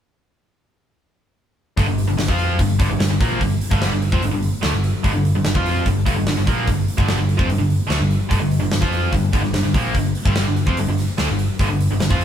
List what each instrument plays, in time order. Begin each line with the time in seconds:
1.77 picked electric bass G1, overdriven electric guitar G2 D3, kick, open hi-hat
1.87 picked electric bass G1, overdriven electric guitar G2 D3
1.98 open hi-hat
2.08 picked electric bass G1, overdriven electric guitar G2 D3
2.18 overdriven electric guitar G2 D3, snare, open hi-hat
2.28 picked electric bass F2, overdriven electric guitar F3 C4 F4, kick
2.39 open hi-hat
2.59 picked electric bass G1, overdriven electric guitar G2 D3, kick, open hi-hat
2.79 picked electric bass G1, overdriven electric guitar G2 D3, kick, open hi-hat
2.90 picked electric bass G1, overdriven electric guitar G2 D3
2.99 picked electric bass G1, overdriven electric guitar G2 D3, snare, open hi-hat
3.09 picked electric bass G1, overdriven electric guitar G2 D3
3.20 picked electric bass A#1, overdriven electric guitar A#2 F3 A#3, kick, open hi-hat
3.40 picked electric bass G1, overdriven electric guitar G2 D3, kick, open hi-hat
3.61 open hi-hat
3.70 picked electric bass G1, overdriven electric guitar G2 D3 G3, kick
3.82 snare, open hi-hat
3.91 picked electric bass G1, overdriven electric guitar G2 D3
4.02 open hi-hat
4.12 picked electric bass F2, overdriven electric guitar F3 C4, kick
4.21 picked electric bass G1, overdriven electric guitar G2 D3, open hi-hat
4.31 picked electric bass G1, overdriven electric guitar G2 D3
4.42 open hi-hat
4.62 picked electric bass D2, overdriven electric guitar D3 A3, snare, open hi-hat
4.72 picked electric bass G1, overdriven electric guitar G2 D3
4.84 open hi-hat
5.03 picked electric bass G1, overdriven electric guitar G2 D3, kick, open hi-hat
5.13 picked electric bass G1, overdriven electric guitar G2 D3
5.25 open hi-hat
5.35 picked electric bass G1, overdriven electric guitar G2 D3
5.44 picked electric bass G1, overdriven electric guitar G2 D3, snare, open hi-hat
5.55 picked electric bass F2, overdriven electric guitar F3 C4 F4, kick
5.66 open hi-hat
5.86 picked electric bass G1, overdriven electric guitar G2 D3, kick, open hi-hat
6.06 picked electric bass G1, overdriven electric guitar G2 D3, kick, open hi-hat
6.16 picked electric bass G1, overdriven electric guitar G2 D3
6.27 picked electric bass G1, overdriven electric guitar G2 D3, snare, open hi-hat
6.37 picked electric bass G1, overdriven electric guitar G2 D3
6.47 picked electric bass A#1, overdriven electric guitar A#2 F3 A#3, kick, open hi-hat
6.67 picked electric bass G1, overdriven electric guitar G2 D3, kick, open hi-hat
6.88 open hi-hat
6.98 picked electric bass G1, overdriven electric guitar G2 D3 G3, kick
7.08 snare, open hi-hat
7.18 picked electric bass G1, overdriven electric guitar G2 D3
7.29 open hi-hat
7.37 picked electric bass F2, overdriven electric guitar F3 C4, kick
7.48 picked electric bass G1, overdriven electric guitar G2 D3, open hi-hat
7.58 picked electric bass G1, overdriven electric guitar G2 D3
7.70 open hi-hat
7.87 picked electric bass D2, overdriven electric guitar D3 A3, snare, open hi-hat
7.98 picked electric bass G1, overdriven electric guitar G2 D3
8.11 open hi-hat
8.29 picked electric bass G1, overdriven electric guitar G2 D3, kick, open hi-hat
8.40 picked electric bass G1, overdriven electric guitar G2 D3
8.51 open hi-hat
8.60 picked electric bass G1, overdriven electric guitar G2 D3
8.71 picked electric bass G1, overdriven electric guitar G2 D3, snare, open hi-hat
8.81 picked electric bass F2, overdriven electric guitar F3 C4 F4, kick
8.92 open hi-hat
9.12 picked electric bass G1, overdriven electric guitar G2 D3, kick, open hi-hat
9.33 picked electric bass G1, overdriven electric guitar G2 D3, kick, open hi-hat
9.42 picked electric bass G1, overdriven electric guitar G2 D3, snare
9.54 picked electric bass G1, overdriven electric guitar G2 D3, snare, open hi-hat
9.63 picked electric bass G1, overdriven electric guitar G2 D3
9.74 picked electric bass A#1, overdriven electric guitar A#2 F3 A#3, kick, open hi-hat
9.95 picked electric bass G1, overdriven electric guitar G2 D3, kick, open hi-hat
10.15 open hi-hat
10.25 picked electric bass G1, overdriven electric guitar G2 D3 G3, kick
10.36 snare, open hi-hat
10.47 picked electric bass G1, overdriven electric guitar G2 D3
10.57 open hi-hat
10.66 picked electric bass F2, overdriven electric guitar F3 C4, kick
10.77 picked electric bass G1, overdriven electric guitar G2 D3, open hi-hat
10.88 picked electric bass G1, overdriven electric guitar G2 D3
10.98 snare, open hi-hat
11.18 picked electric bass D2, overdriven electric guitar D3 A3, snare, open hi-hat
11.29 picked electric bass G1, overdriven electric guitar G2 D3
11.39 open hi-hat
11.59 picked electric bass G1, overdriven electric guitar G2 D3, kick, open hi-hat
11.69 picked electric bass G1, overdriven electric guitar G2 D3
11.80 open hi-hat
11.91 picked electric bass G1, overdriven electric guitar G2 D3
12.00 picked electric bass G1, overdriven electric guitar G2 D3, snare, open hi-hat
12.10 picked electric bass F2, overdriven electric guitar F3 C4 F4, kick
12.21 open hi-hat